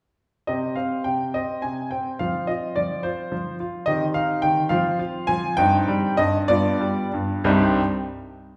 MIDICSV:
0, 0, Header, 1, 2, 480
1, 0, Start_track
1, 0, Key_signature, -3, "minor"
1, 0, Tempo, 579151
1, 395, Time_signature, 6, 3, 24, 8
1, 1829, Tempo, 562324
1, 4709, Tempo, 620476
1, 7021, End_track
2, 0, Start_track
2, 0, Title_t, "Grand piano"
2, 0, Program_c, 0, 0
2, 392, Note_on_c, 0, 75, 67
2, 397, Note_on_c, 0, 67, 34
2, 400, Note_on_c, 0, 60, 33
2, 402, Note_on_c, 0, 48, 46
2, 612, Note_off_c, 0, 75, 0
2, 625, Note_off_c, 0, 60, 0
2, 626, Note_on_c, 0, 77, 62
2, 634, Note_off_c, 0, 48, 0
2, 638, Note_on_c, 0, 60, 45
2, 849, Note_off_c, 0, 77, 0
2, 865, Note_on_c, 0, 79, 65
2, 872, Note_off_c, 0, 60, 0
2, 874, Note_on_c, 0, 48, 42
2, 1110, Note_off_c, 0, 48, 0
2, 1112, Note_off_c, 0, 79, 0
2, 1112, Note_on_c, 0, 75, 66
2, 1121, Note_on_c, 0, 60, 42
2, 1330, Note_off_c, 0, 75, 0
2, 1343, Note_on_c, 0, 80, 62
2, 1351, Note_off_c, 0, 60, 0
2, 1356, Note_on_c, 0, 48, 39
2, 1563, Note_off_c, 0, 80, 0
2, 1580, Note_on_c, 0, 79, 57
2, 1586, Note_off_c, 0, 48, 0
2, 1591, Note_on_c, 0, 60, 40
2, 1797, Note_off_c, 0, 67, 0
2, 1815, Note_off_c, 0, 60, 0
2, 1818, Note_on_c, 0, 77, 71
2, 1822, Note_off_c, 0, 79, 0
2, 1826, Note_on_c, 0, 53, 51
2, 1826, Note_on_c, 0, 65, 35
2, 1827, Note_on_c, 0, 60, 36
2, 2054, Note_off_c, 0, 65, 0
2, 2056, Note_on_c, 0, 75, 64
2, 2062, Note_off_c, 0, 53, 0
2, 2065, Note_off_c, 0, 77, 0
2, 2067, Note_on_c, 0, 65, 46
2, 2298, Note_on_c, 0, 74, 67
2, 2303, Note_off_c, 0, 65, 0
2, 2305, Note_off_c, 0, 75, 0
2, 2309, Note_on_c, 0, 53, 44
2, 2533, Note_on_c, 0, 72, 71
2, 2539, Note_on_c, 0, 65, 48
2, 2544, Note_off_c, 0, 53, 0
2, 2545, Note_off_c, 0, 74, 0
2, 2776, Note_off_c, 0, 65, 0
2, 2777, Note_on_c, 0, 53, 49
2, 2964, Note_off_c, 0, 72, 0
2, 3012, Note_off_c, 0, 53, 0
2, 3018, Note_on_c, 0, 65, 50
2, 3227, Note_off_c, 0, 60, 0
2, 3238, Note_on_c, 0, 75, 84
2, 3251, Note_off_c, 0, 65, 0
2, 3251, Note_on_c, 0, 51, 60
2, 3251, Note_on_c, 0, 60, 44
2, 3252, Note_on_c, 0, 67, 44
2, 3387, Note_off_c, 0, 75, 0
2, 3482, Note_on_c, 0, 77, 84
2, 3485, Note_off_c, 0, 51, 0
2, 3489, Note_on_c, 0, 63, 54
2, 3701, Note_off_c, 0, 77, 0
2, 3718, Note_on_c, 0, 79, 87
2, 3721, Note_off_c, 0, 63, 0
2, 3729, Note_on_c, 0, 51, 55
2, 3932, Note_off_c, 0, 60, 0
2, 3932, Note_off_c, 0, 67, 0
2, 3939, Note_off_c, 0, 79, 0
2, 3951, Note_on_c, 0, 77, 89
2, 3960, Note_on_c, 0, 53, 70
2, 3961, Note_on_c, 0, 65, 53
2, 3962, Note_off_c, 0, 51, 0
2, 3962, Note_on_c, 0, 60, 48
2, 4194, Note_off_c, 0, 65, 0
2, 4201, Note_off_c, 0, 53, 0
2, 4207, Note_on_c, 0, 65, 62
2, 4445, Note_on_c, 0, 80, 107
2, 4449, Note_off_c, 0, 65, 0
2, 4449, Note_off_c, 0, 77, 0
2, 4458, Note_on_c, 0, 53, 61
2, 4671, Note_off_c, 0, 60, 0
2, 4676, Note_off_c, 0, 80, 0
2, 4698, Note_on_c, 0, 79, 106
2, 4701, Note_off_c, 0, 53, 0
2, 4708, Note_on_c, 0, 60, 54
2, 4709, Note_on_c, 0, 63, 54
2, 4710, Note_on_c, 0, 43, 81
2, 4934, Note_off_c, 0, 43, 0
2, 4940, Note_on_c, 0, 55, 73
2, 5167, Note_on_c, 0, 75, 92
2, 5169, Note_off_c, 0, 55, 0
2, 5172, Note_off_c, 0, 79, 0
2, 5176, Note_on_c, 0, 43, 71
2, 5313, Note_off_c, 0, 75, 0
2, 5384, Note_off_c, 0, 60, 0
2, 5385, Note_off_c, 0, 63, 0
2, 5405, Note_off_c, 0, 43, 0
2, 5405, Note_on_c, 0, 74, 96
2, 5414, Note_on_c, 0, 65, 60
2, 5416, Note_on_c, 0, 43, 74
2, 5416, Note_on_c, 0, 59, 57
2, 5652, Note_off_c, 0, 43, 0
2, 5655, Note_on_c, 0, 55, 54
2, 5852, Note_off_c, 0, 74, 0
2, 5901, Note_off_c, 0, 55, 0
2, 5911, Note_on_c, 0, 43, 58
2, 6124, Note_off_c, 0, 65, 0
2, 6125, Note_off_c, 0, 59, 0
2, 6140, Note_off_c, 0, 43, 0
2, 6149, Note_on_c, 0, 36, 95
2, 6151, Note_on_c, 0, 43, 77
2, 6153, Note_on_c, 0, 55, 78
2, 6154, Note_on_c, 0, 60, 75
2, 6154, Note_on_c, 0, 72, 62
2, 6156, Note_on_c, 0, 63, 73
2, 6158, Note_on_c, 0, 67, 79
2, 6419, Note_off_c, 0, 36, 0
2, 6420, Note_off_c, 0, 43, 0
2, 6421, Note_off_c, 0, 55, 0
2, 6421, Note_off_c, 0, 60, 0
2, 6421, Note_off_c, 0, 72, 0
2, 6422, Note_off_c, 0, 63, 0
2, 6423, Note_off_c, 0, 67, 0
2, 7021, End_track
0, 0, End_of_file